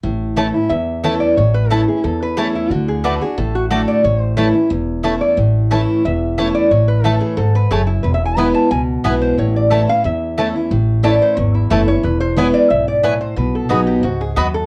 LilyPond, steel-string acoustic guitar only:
\new Staff \with { instrumentName = "Steel-string acoustic guitar" } { \time 4/4 \key a \major \tempo 4 = 180 << { r4 <e a cis' e'>8 <cis' e'>8 r4 <e a cis' e'>4 | r4 <e a cis' e'>8 <cis' e'>8 r4 <e a cis' e'>4 | r4 <d a d' fis'>8 <d' fis'>8 r4 <d a d' fis'>4 | r4 <e a cis' e'>8 <cis' e'>8 r4 <e a cis' e'>4 |
r4 <e a cis' e'>4 r4 <e a cis' e'>4 | r4 <e a cis' e'>4 r2 | r4 <e gis b e'>4 r4 <e gis b e'>4 | r4 <e a cis' e'>8 <cis' e'>8 r4 <e a cis' e'>8 <cis' e'>8 |
r4 <e a cis' e'>4 r4 <e a cis' e'>8 <cis' e'>8 | r4 <e gis b e'>4 r2 | r4 <fis b dis' fis'>4 r2 | } \\ { a,2 e,2 | a,2 e,2 | d2 a,2 | a,2 e,2 |
a,2 e,2 | a,2 gis,4 fis,4 | e,2 b,2 | a,2 e,2 |
a,2 e,2 | e,2 gis,4 a,4 | b,2 gis,4 fis,4 | } >> }